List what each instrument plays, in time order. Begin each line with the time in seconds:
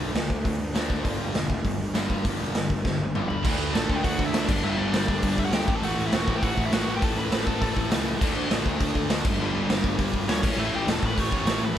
Already playing: distorted electric guitar D3 A3 D4
0.00 picked electric bass B1
0.14 picked electric bass D2, distorted electric guitar D3 A3, snare, open hi-hat
0.30 picked electric bass D2, kick
0.44 picked electric bass D2, distorted electric guitar D3 A3, kick, open hi-hat
0.60 picked electric bass D2
0.74 picked electric bass D2, distorted electric guitar D3 A3 D4, snare, open hi-hat
0.90 kick
1.04 picked electric bass G1, distorted electric guitar G2 D3 G3, kick, open hi-hat
1.20 picked electric bass G1
1.34 picked electric bass E1, distorted electric guitar G2 D3, snare, open hi-hat
1.50 kick
1.64 picked electric bass G1, distorted electric guitar G2 D3, kick, open hi-hat
1.80 picked electric bass G1
1.94 picked electric bass G1, distorted electric guitar G2 D3 G3, snare, open hi-hat
2.10 kick
2.25 picked electric bass G1, distorted electric guitar G2 D3 G3, kick, open hi-hat
2.39 picked electric bass E1
2.55 picked electric bass G1, distorted electric guitar G2 D3, snare, open hi-hat
2.70 picked electric bass G1, kick
2.84 picked electric bass G1, distorted electric guitar G2 D3, kick, snare
2.99 picked electric bass G1, high tom
3.14 picked electric bass G1, distorted electric guitar G2 D3 G3, mid tom
3.29 lead electric guitar B4 B5, floor tom
3.43 picked electric bass D2, distorted electric guitar D3 A3 D4, kick, crash
3.58 picked electric bass D2
3.73 picked electric bass A1, distorted electric guitar D3 A3 D4, lead electric guitar A4 A5, snare, open hi-hat
3.89 picked electric bass D2, kick
3.96 lead electric guitar G4 G5
4.04 picked electric bass D2, distorted electric guitar D3 A3 D4, lead electric guitar F#4 F#5, kick, open hi-hat
4.19 picked electric bass D2, kick
4.26 lead electric guitar E4 E5
4.34 picked electric bass D2, distorted electric guitar D3 A3 D4, snare, open hi-hat
4.47 picked electric bass G1, distorted electric guitar G2 D3 G3, lead electric guitar D4 D5, kick, crash
4.63 picked electric bass G1, distorted electric guitar G2 D3 G3, lead electric guitar E4 E5
4.77 picked electric bass G1, lead electric guitar D4 D5
4.92 picked electric bass G1, distorted electric guitar G2 D3 G3, lead electric guitar D4 D5, snare, open hi-hat
5.08 picked electric bass G1, kick
5.22 picked electric bass G1, distorted electric guitar G2 D3 G3, kick, open hi-hat
5.38 picked electric bass G1, lead electric guitar E4 E5, kick
5.45 lead electric guitar F#4 F#5
5.52 picked electric bass D2, distorted electric guitar G2 D3 G3, lead electric guitar G4 G5, snare, open hi-hat
5.66 picked electric bass A1, distorted electric guitar A2 E3 A3, kick
5.75 lead electric guitar A4 A5
5.82 picked electric bass A1, distorted electric guitar A2 E3 A3, lead electric guitar F#4 F#5, open hi-hat
5.97 picked electric bass A1
6.07 lead electric guitar E4 E5
6.12 picked electric bass E1, distorted electric guitar A2 E3 A3, lead electric guitar F#4 F#5, snare, open hi-hat
6.28 picked electric bass A1, kick
6.36 lead electric guitar G4 G5
6.42 picked electric bass A1, distorted electric guitar A2 E3 A3, lead electric guitar F#4 F#5, kick, open hi-hat
6.57 picked electric bass A1, kick
6.66 lead electric guitar E4 E5
6.71 picked electric bass A1, distorted electric guitar A2 E3 A3, lead electric guitar F#4 F#5, snare, open hi-hat
6.86 picked electric bass A1, distorted electric guitar A2 E3 A3
6.96 lead electric guitar G4 G5
7.02 picked electric bass A1, distorted electric guitar A2 E3 A3, lead electric guitar A4 A5, kick, open hi-hat
7.17 picked electric bass A1, lead electric guitar B4 B5
7.31 picked electric bass A1, distorted electric guitar A2 E3 A3, snare, open hi-hat
7.46 picked electric bass A1, lead electric guitar A4 A5, kick
7.61 picked electric bass A1, distorted electric guitar A2 E3 A3, lead electric guitar A4 A5, kick, open hi-hat
7.76 picked electric bass A1, kick
7.91 picked electric bass C#2, distorted electric guitar A2 E3 A3, snare, open hi-hat
8.20 picked electric bass D2, distorted electric guitar D3 A3 D4, kick, crash
8.36 picked electric bass D2
8.50 picked electric bass A1, distorted electric guitar D3 A3 D4, snare, open hi-hat
8.66 picked electric bass D2, kick
8.80 picked electric bass D2, distorted electric guitar D3 A3 D4, kick, open hi-hat
8.95 picked electric bass D2, kick
9.10 picked electric bass D2, distorted electric guitar D3 A3 D4, snare, open hi-hat
9.24 picked electric bass G1, distorted electric guitar G2 D3, kick, crash
9.28 distorted electric guitar G3
9.39 picked electric bass G1, distorted electric guitar G2 D3 G3
9.54 picked electric bass G1
9.69 picked electric bass G1, distorted electric guitar G2 D3 G3, snare, open hi-hat
9.84 picked electric bass G1, kick
9.98 picked electric bass G1, distorted electric guitar G2 D3 G3, kick, open hi-hat
10.14 picked electric bass G1, kick
10.28 picked electric bass D2, distorted electric guitar G2 D3 G3, lead electric guitar C#4 C#5, snare, open hi-hat
10.42 picked electric bass A1, distorted electric guitar A2 E3 A3, kick, crash
10.57 picked electric bass A1, distorted electric guitar A2 E3 A3, lead electric guitar E4 E5
10.72 picked electric bass A1, lead electric guitar G4 G5
10.87 picked electric bass E1, distorted electric guitar A2 E3 A3, lead electric guitar A4 A5, snare, open hi-hat
11.03 picked electric bass A1, lead electric guitar B4 B5, kick
11.17 picked electric bass A1, distorted electric guitar A2 E3 A3, lead electric guitar C#5 C#6, kick, open hi-hat
11.32 picked electric bass A1, kick
11.46 picked electric bass A1, distorted electric guitar A2 E3 A3, lead electric guitar C#5 C#6, snare, open hi-hat
11.62 picked electric bass A1, lead electric guitar B4 B5
11.75 distorted electric guitar G2